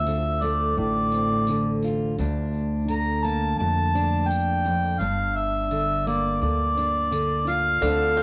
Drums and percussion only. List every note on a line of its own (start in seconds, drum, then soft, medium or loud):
0.07 tambourine medium
0.42 tambourine medium
1.12 tambourine medium
1.47 tambourine medium
1.83 tambourine medium
2.18 tambourine medium
2.53 tambourine soft
2.88 tambourine medium
3.25 tambourine medium
3.96 tambourine medium
4.31 tambourine medium
4.65 tambourine medium
5.01 tambourine medium
5.36 tambourine soft
5.71 tambourine medium
6.07 tambourine medium
6.42 tambourine soft
6.77 tambourine medium
7.12 tambourine medium
7.47 tambourine medium
7.82 tambourine medium